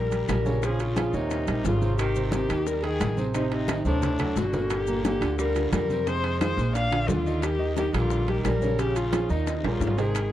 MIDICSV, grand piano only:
0, 0, Header, 1, 2, 480
1, 0, Start_track
1, 0, Key_signature, -3, "major"
1, 0, Tempo, 340136
1, 885, Time_signature, 4, 2, 24, 8
1, 14564, End_track
2, 0, Start_track
2, 0, Title_t, "Grand piano"
2, 0, Program_c, 0, 0
2, 149, Note_on_c, 0, 55, 66
2, 150, Note_on_c, 0, 67, 67
2, 162, Note_on_c, 0, 70, 62
2, 549, Note_off_c, 0, 55, 0
2, 550, Note_off_c, 0, 67, 0
2, 557, Note_off_c, 0, 70, 0
2, 641, Note_on_c, 0, 49, 70
2, 642, Note_on_c, 0, 61, 67
2, 645, Note_on_c, 0, 73, 68
2, 840, Note_off_c, 0, 49, 0
2, 840, Note_off_c, 0, 61, 0
2, 842, Note_off_c, 0, 73, 0
2, 880, Note_on_c, 0, 49, 64
2, 886, Note_on_c, 0, 61, 67
2, 886, Note_on_c, 0, 73, 68
2, 1276, Note_off_c, 0, 49, 0
2, 1280, Note_off_c, 0, 61, 0
2, 1280, Note_off_c, 0, 73, 0
2, 1346, Note_on_c, 0, 53, 63
2, 1354, Note_on_c, 0, 65, 58
2, 1360, Note_on_c, 0, 68, 64
2, 1551, Note_off_c, 0, 53, 0
2, 1556, Note_off_c, 0, 65, 0
2, 1559, Note_off_c, 0, 68, 0
2, 1608, Note_on_c, 0, 46, 75
2, 1610, Note_on_c, 0, 73, 80
2, 1614, Note_on_c, 0, 58, 73
2, 2001, Note_off_c, 0, 46, 0
2, 2002, Note_off_c, 0, 73, 0
2, 2005, Note_off_c, 0, 58, 0
2, 2086, Note_on_c, 0, 55, 71
2, 2090, Note_on_c, 0, 67, 66
2, 2095, Note_on_c, 0, 70, 63
2, 2480, Note_off_c, 0, 55, 0
2, 2482, Note_off_c, 0, 67, 0
2, 2486, Note_off_c, 0, 70, 0
2, 2560, Note_on_c, 0, 48, 70
2, 2566, Note_on_c, 0, 60, 71
2, 2567, Note_on_c, 0, 72, 72
2, 2957, Note_off_c, 0, 48, 0
2, 2960, Note_off_c, 0, 60, 0
2, 2961, Note_off_c, 0, 72, 0
2, 3048, Note_on_c, 0, 48, 74
2, 3053, Note_on_c, 0, 60, 75
2, 3059, Note_on_c, 0, 72, 73
2, 3244, Note_off_c, 0, 48, 0
2, 3247, Note_off_c, 0, 60, 0
2, 3251, Note_off_c, 0, 72, 0
2, 3268, Note_on_c, 0, 48, 72
2, 3277, Note_on_c, 0, 60, 76
2, 3281, Note_on_c, 0, 72, 72
2, 3473, Note_off_c, 0, 48, 0
2, 3478, Note_off_c, 0, 60, 0
2, 3480, Note_off_c, 0, 72, 0
2, 3511, Note_on_c, 0, 51, 69
2, 3513, Note_on_c, 0, 63, 67
2, 3523, Note_on_c, 0, 67, 68
2, 3912, Note_off_c, 0, 51, 0
2, 3913, Note_off_c, 0, 63, 0
2, 3919, Note_off_c, 0, 67, 0
2, 4000, Note_on_c, 0, 51, 67
2, 4005, Note_on_c, 0, 63, 67
2, 4006, Note_on_c, 0, 79, 64
2, 4397, Note_off_c, 0, 51, 0
2, 4400, Note_off_c, 0, 63, 0
2, 4401, Note_off_c, 0, 79, 0
2, 4471, Note_on_c, 0, 48, 71
2, 4475, Note_on_c, 0, 60, 70
2, 4477, Note_on_c, 0, 72, 72
2, 4675, Note_off_c, 0, 48, 0
2, 4677, Note_off_c, 0, 60, 0
2, 4679, Note_off_c, 0, 72, 0
2, 4719, Note_on_c, 0, 48, 72
2, 4723, Note_on_c, 0, 60, 75
2, 4728, Note_on_c, 0, 72, 74
2, 5116, Note_off_c, 0, 48, 0
2, 5119, Note_off_c, 0, 60, 0
2, 5122, Note_off_c, 0, 72, 0
2, 5199, Note_on_c, 0, 51, 66
2, 5201, Note_on_c, 0, 67, 62
2, 5202, Note_on_c, 0, 63, 63
2, 5400, Note_off_c, 0, 51, 0
2, 5401, Note_off_c, 0, 63, 0
2, 5401, Note_off_c, 0, 67, 0
2, 5440, Note_on_c, 0, 48, 74
2, 5441, Note_on_c, 0, 60, 82
2, 5449, Note_on_c, 0, 72, 73
2, 5838, Note_off_c, 0, 48, 0
2, 5838, Note_off_c, 0, 60, 0
2, 5843, Note_off_c, 0, 72, 0
2, 5915, Note_on_c, 0, 54, 63
2, 5925, Note_on_c, 0, 69, 69
2, 5927, Note_on_c, 0, 66, 69
2, 6315, Note_off_c, 0, 54, 0
2, 6321, Note_off_c, 0, 66, 0
2, 6321, Note_off_c, 0, 69, 0
2, 6405, Note_on_c, 0, 58, 66
2, 6406, Note_on_c, 0, 46, 73
2, 6410, Note_on_c, 0, 70, 66
2, 6801, Note_off_c, 0, 46, 0
2, 6801, Note_off_c, 0, 58, 0
2, 6804, Note_off_c, 0, 70, 0
2, 6881, Note_on_c, 0, 46, 74
2, 6885, Note_on_c, 0, 58, 75
2, 6885, Note_on_c, 0, 70, 74
2, 7081, Note_off_c, 0, 46, 0
2, 7084, Note_off_c, 0, 58, 0
2, 7084, Note_off_c, 0, 70, 0
2, 7120, Note_on_c, 0, 46, 74
2, 7122, Note_on_c, 0, 58, 73
2, 7129, Note_on_c, 0, 70, 74
2, 7320, Note_off_c, 0, 46, 0
2, 7322, Note_off_c, 0, 58, 0
2, 7326, Note_off_c, 0, 70, 0
2, 7354, Note_on_c, 0, 50, 64
2, 7358, Note_on_c, 0, 62, 68
2, 7360, Note_on_c, 0, 65, 64
2, 7754, Note_off_c, 0, 50, 0
2, 7756, Note_off_c, 0, 62, 0
2, 7758, Note_off_c, 0, 65, 0
2, 7826, Note_on_c, 0, 50, 61
2, 7834, Note_on_c, 0, 62, 64
2, 7835, Note_on_c, 0, 65, 65
2, 8230, Note_off_c, 0, 50, 0
2, 8234, Note_off_c, 0, 62, 0
2, 8235, Note_off_c, 0, 65, 0
2, 8306, Note_on_c, 0, 48, 67
2, 8315, Note_on_c, 0, 60, 61
2, 8319, Note_on_c, 0, 72, 68
2, 8512, Note_off_c, 0, 48, 0
2, 8518, Note_off_c, 0, 60, 0
2, 8520, Note_off_c, 0, 72, 0
2, 8560, Note_on_c, 0, 48, 73
2, 8565, Note_on_c, 0, 60, 68
2, 8571, Note_on_c, 0, 72, 66
2, 8958, Note_off_c, 0, 48, 0
2, 8960, Note_off_c, 0, 60, 0
2, 8964, Note_off_c, 0, 72, 0
2, 9042, Note_on_c, 0, 63, 66
2, 9044, Note_on_c, 0, 51, 69
2, 9044, Note_on_c, 0, 65, 62
2, 9242, Note_off_c, 0, 63, 0
2, 9243, Note_off_c, 0, 51, 0
2, 9243, Note_off_c, 0, 65, 0
2, 9269, Note_on_c, 0, 46, 78
2, 9270, Note_on_c, 0, 58, 73
2, 9278, Note_on_c, 0, 70, 73
2, 9671, Note_off_c, 0, 46, 0
2, 9672, Note_off_c, 0, 58, 0
2, 9676, Note_off_c, 0, 70, 0
2, 9754, Note_on_c, 0, 50, 68
2, 9764, Note_on_c, 0, 65, 68
2, 9768, Note_on_c, 0, 62, 71
2, 10154, Note_off_c, 0, 50, 0
2, 10160, Note_off_c, 0, 65, 0
2, 10162, Note_off_c, 0, 62, 0
2, 10248, Note_on_c, 0, 63, 71
2, 10249, Note_on_c, 0, 51, 69
2, 10256, Note_on_c, 0, 75, 71
2, 10642, Note_off_c, 0, 63, 0
2, 10643, Note_off_c, 0, 51, 0
2, 10647, Note_off_c, 0, 75, 0
2, 10707, Note_on_c, 0, 51, 72
2, 10713, Note_on_c, 0, 63, 73
2, 10715, Note_on_c, 0, 75, 78
2, 10913, Note_off_c, 0, 51, 0
2, 10916, Note_off_c, 0, 63, 0
2, 10918, Note_off_c, 0, 75, 0
2, 10953, Note_on_c, 0, 51, 74
2, 10956, Note_on_c, 0, 63, 76
2, 10961, Note_on_c, 0, 75, 77
2, 11156, Note_off_c, 0, 51, 0
2, 11158, Note_off_c, 0, 63, 0
2, 11161, Note_off_c, 0, 75, 0
2, 11202, Note_on_c, 0, 55, 67
2, 11205, Note_on_c, 0, 67, 70
2, 11210, Note_on_c, 0, 70, 72
2, 11598, Note_off_c, 0, 55, 0
2, 11600, Note_off_c, 0, 67, 0
2, 11603, Note_off_c, 0, 70, 0
2, 11673, Note_on_c, 0, 55, 72
2, 11675, Note_on_c, 0, 67, 60
2, 11679, Note_on_c, 0, 70, 67
2, 12073, Note_off_c, 0, 55, 0
2, 12074, Note_off_c, 0, 67, 0
2, 12077, Note_off_c, 0, 70, 0
2, 12165, Note_on_c, 0, 61, 62
2, 12171, Note_on_c, 0, 49, 63
2, 12174, Note_on_c, 0, 73, 70
2, 12363, Note_off_c, 0, 61, 0
2, 12367, Note_off_c, 0, 49, 0
2, 12369, Note_off_c, 0, 73, 0
2, 12394, Note_on_c, 0, 49, 69
2, 12399, Note_on_c, 0, 61, 71
2, 12402, Note_on_c, 0, 73, 68
2, 12793, Note_off_c, 0, 49, 0
2, 12796, Note_off_c, 0, 61, 0
2, 12798, Note_off_c, 0, 73, 0
2, 12870, Note_on_c, 0, 53, 66
2, 12873, Note_on_c, 0, 65, 66
2, 12881, Note_on_c, 0, 68, 67
2, 13074, Note_off_c, 0, 53, 0
2, 13076, Note_off_c, 0, 65, 0
2, 13081, Note_off_c, 0, 68, 0
2, 13126, Note_on_c, 0, 51, 77
2, 13130, Note_on_c, 0, 63, 76
2, 13135, Note_on_c, 0, 75, 76
2, 13520, Note_off_c, 0, 51, 0
2, 13522, Note_off_c, 0, 63, 0
2, 13525, Note_off_c, 0, 75, 0
2, 13602, Note_on_c, 0, 55, 67
2, 13610, Note_on_c, 0, 70, 70
2, 13611, Note_on_c, 0, 67, 63
2, 13997, Note_off_c, 0, 55, 0
2, 14002, Note_off_c, 0, 70, 0
2, 14003, Note_off_c, 0, 67, 0
2, 14081, Note_on_c, 0, 48, 67
2, 14085, Note_on_c, 0, 72, 74
2, 14087, Note_on_c, 0, 60, 67
2, 14280, Note_off_c, 0, 48, 0
2, 14282, Note_off_c, 0, 72, 0
2, 14284, Note_off_c, 0, 60, 0
2, 14564, End_track
0, 0, End_of_file